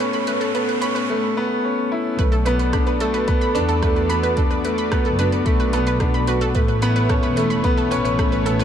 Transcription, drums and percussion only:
0.00 closed hi-hat soft
0.13 closed hi-hat soft
0.27 closed hi-hat medium
0.41 closed hi-hat soft
0.55 closed hi-hat soft
0.69 closed hi-hat soft
0.82 closed hi-hat medium
0.96 closed hi-hat soft
2.19 kick loud
2.19 closed hi-hat soft
2.33 closed hi-hat soft
2.46 closed hi-hat medium
2.59 closed hi-hat soft
2.73 kick loud
2.73 cross-stick medium
2.73 closed hi-hat soft
2.87 closed hi-hat soft
3.00 closed hi-hat medium
3.14 closed hi-hat soft
3.28 kick loud
3.28 closed hi-hat soft
3.42 closed hi-hat soft
3.55 closed hi-hat medium
3.69 closed hi-hat soft
3.83 kick loud
3.83 cross-stick medium
3.83 closed hi-hat soft
3.96 closed hi-hat soft
4.10 closed hi-hat medium
4.24 closed hi-hat soft
4.37 kick loud
4.37 closed hi-hat soft
4.51 closed hi-hat soft
4.65 closed hi-hat medium
4.78 closed hi-hat soft
4.92 kick loud
4.92 cross-stick loud
4.92 closed hi-hat soft
5.05 closed hi-hat soft
5.19 closed hi-hat medium
5.32 closed hi-hat soft
5.46 kick loud
5.46 closed hi-hat soft
5.60 closed hi-hat soft
5.73 closed hi-hat medium
5.87 closed hi-hat soft
6.00 kick loud
6.00 cross-stick medium
6.00 closed hi-hat soft
6.14 closed hi-hat soft
6.27 closed hi-hat medium
6.41 closed hi-hat soft
6.55 kick loud
6.55 closed hi-hat soft
6.68 closed hi-hat soft
6.82 closed hi-hat medium
6.96 closed hi-hat soft
7.10 kick loud
7.10 cross-stick loud
7.10 closed hi-hat soft
7.23 closed hi-hat soft
7.37 closed hi-hat medium
7.51 closed hi-hat soft
7.64 kick loud
7.64 closed hi-hat soft
7.78 closed hi-hat soft
7.92 closed hi-hat medium
8.05 closed hi-hat soft
8.19 kick loud
8.19 cross-stick loud
8.19 closed hi-hat soft
8.33 closed hi-hat soft
8.46 closed hi-hat medium
8.60 closed hi-hat soft

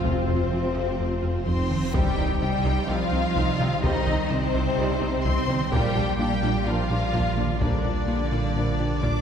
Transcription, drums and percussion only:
0.05 taiko loud
1.47 taiko medium
1.71 taiko mid medium
1.94 taiko loud
3.37 taiko medium
3.61 taiko mid medium
3.84 taiko loud
5.25 taiko medium
5.49 taiko mid medium
5.72 taiko loud
7.14 taiko medium
7.38 taiko mid medium
7.61 taiko loud
9.03 taiko medium

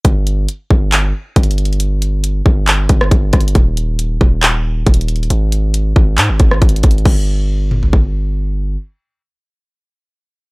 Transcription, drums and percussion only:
0.05 kick loud
0.05 closed hi-hat medium
0.27 closed hi-hat medium
0.49 closed hi-hat medium
0.71 kick loud
0.92 clap loud
0.92 closed hi-hat medium
1.36 kick loud
1.36 closed hi-hat medium
1.43 closed hi-hat medium
1.51 closed hi-hat medium
1.58 closed hi-hat medium
1.65 closed hi-hat soft
1.73 closed hi-hat soft
1.80 closed hi-hat medium
2.02 closed hi-hat medium
2.24 closed hi-hat medium
2.46 kick loud
2.67 clap loud
2.67 closed hi-hat medium
2.89 kick loud
2.89 closed hi-hat medium
3.01 cross-stick loud
3.11 kick loud
3.11 closed hi-hat medium
3.33 kick loud
3.33 cross-stick medium
3.33 closed hi-hat soft
3.33 open hi-hat medium
3.41 closed hi-hat medium
3.48 closed hi-hat medium
3.55 kick loud
3.55 closed hi-hat medium
3.77 closed hi-hat medium
3.99 closed hi-hat medium
4.21 kick loud
4.43 clap loud
4.43 closed hi-hat medium
4.87 kick loud
4.87 closed hi-hat medium
4.94 closed hi-hat medium
5.01 closed hi-hat medium
5.08 closed hi-hat medium
5.16 closed hi-hat soft
5.23 closed hi-hat soft
5.30 closed hi-hat medium
5.52 closed hi-hat medium
5.74 closed hi-hat medium
5.96 kick loud
6.18 clap loud
6.18 closed hi-hat medium
6.40 kick loud
6.40 closed hi-hat medium
6.51 cross-stick medium
6.62 kick loud
6.62 closed hi-hat medium
6.69 closed hi-hat medium
6.76 closed hi-hat medium
6.83 kick loud
6.83 closed hi-hat medium
6.83 open hi-hat medium
6.91 closed hi-hat medium
6.98 closed hi-hat soft
7.05 kick loud
7.05 crash medium
7.71 mid tom medium
7.83 floor tom medium
7.93 kick medium

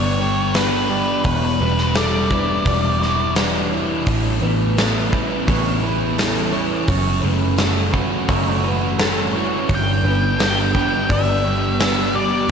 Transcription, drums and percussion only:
0.54 snare loud
0.54 open hi-hat medium
1.24 kick loud
1.24 open hi-hat medium
1.78 snare soft
1.95 snare loud
1.95 open hi-hat medium
2.31 kick medium
2.65 kick loud
2.65 open hi-hat medium
3.03 snare soft
3.35 snare loud
3.35 open hi-hat soft
4.06 kick loud
4.06 open hi-hat medium
4.78 snare loud
4.78 open hi-hat soft
5.13 kick medium
5.48 kick loud
5.48 open hi-hat medium
6.18 snare loud
6.18 open hi-hat medium
6.88 kick loud
6.88 open hi-hat medium
7.58 snare loud
7.58 open hi-hat medium
7.94 kick medium
8.29 kick loud
8.29 open hi-hat medium
8.99 snare loud
8.99 open hi-hat soft
9.69 kick loud
9.69 open hi-hat soft
10.39 snare loud
10.39 open hi-hat medium
10.75 kick medium
11.10 kick loud
11.10 open hi-hat soft
11.80 snare loud
11.80 open hi-hat medium

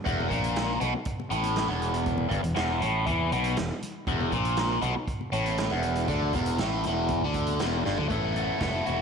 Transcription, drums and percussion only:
0.06 kick loud
0.06 closed hi-hat medium
0.20 high conga medium
0.20 low conga medium
0.31 kick medium
0.31 closed hi-hat medium
0.31 high conga medium
0.44 closed hi-hat medium
0.56 snare loud
0.56 closed hi-hat medium
0.81 closed hi-hat medium
0.81 low conga medium
1.05 kick loud
1.05 closed hi-hat medium
1.20 high conga medium
1.31 closed hi-hat medium
1.43 closed hi-hat medium
1.43 high conga medium
1.56 snare loud
1.56 closed hi-hat medium
1.56 high conga medium
1.80 closed hi-hat medium
1.80 low conga medium
1.94 closed hi-hat medium
2.06 kick loud
2.06 closed hi-hat medium
2.18 high conga medium
2.18 low conga medium
2.30 kick medium
2.30 closed hi-hat medium
2.30 high conga medium
2.44 closed hi-hat medium
2.56 snare loud
2.56 closed hi-hat medium
2.81 closed hi-hat medium
2.81 low conga medium
3.07 kick loud
3.07 closed hi-hat medium
3.20 high conga medium
3.32 closed hi-hat medium
3.44 closed hi-hat medium
3.44 high conga medium
3.56 snare loud
3.56 closed hi-hat medium
3.56 high conga medium
3.82 closed hi-hat medium
3.82 low conga medium
4.07 kick loud
4.07 closed hi-hat medium
4.21 high conga medium
4.21 low conga medium
4.32 kick medium
4.32 closed hi-hat medium
4.32 high conga medium
4.45 closed hi-hat medium
4.57 snare loud
4.57 closed hi-hat medium
4.82 closed hi-hat medium
4.82 low conga medium
5.08 kick loud
5.08 closed hi-hat medium
5.21 high conga medium
5.33 closed hi-hat medium
5.46 closed hi-hat medium
5.46 high conga medium
5.58 snare loud
5.58 closed hi-hat medium
5.58 high conga medium
5.83 closed hi-hat medium
5.83 low conga medium
5.95 closed hi-hat medium
6.08 kick loud
6.08 closed hi-hat medium
6.22 low conga medium
6.33 kick medium
6.33 closed hi-hat medium
6.33 high conga medium
6.46 closed hi-hat medium
6.58 snare loud
6.58 closed hi-hat medium
6.83 closed hi-hat medium
7.08 kick loud
7.08 closed hi-hat medium
7.34 kick medium
7.34 closed hi-hat medium
7.47 closed hi-hat medium
7.47 high conga medium
7.59 snare loud
7.59 closed hi-hat medium
7.59 high conga medium
7.85 snare medium
7.85 low conga medium
7.97 floor tom medium
8.10 kick loud
8.10 closed hi-hat medium
8.36 closed hi-hat medium
8.60 kick loud
8.60 snare loud
8.60 closed hi-hat medium
8.86 closed hi-hat medium
8.86 high conga medium
8.86 low conga medium

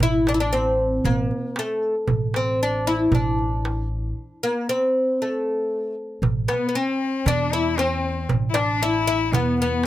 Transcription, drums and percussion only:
0.00 darbuka dum medium
0.27 darbuka tek medium
0.40 darbuka ka soft
0.79 darbuka ka soft
1.05 darbuka dum medium
1.31 darbuka ka soft
1.56 darbuka tek medium
2.08 darbuka dum medium
2.34 darbuka tek medium
2.47 darbuka ka soft
3.12 darbuka dum medium
3.39 darbuka ka soft
3.65 darbuka tek medium
6.23 darbuka dum medium
6.49 darbuka tek medium
6.87 darbuka ka soft
7.26 darbuka dum medium
7.40 darbuka ka soft
7.52 darbuka ka soft
7.78 darbuka tek medium
8.29 darbuka dum medium
8.55 darbuka tek medium
8.94 darbuka ka soft
9.33 darbuka dum medium
9.46 darbuka ka soft
9.59 darbuka ka soft
9.83 darbuka tek medium

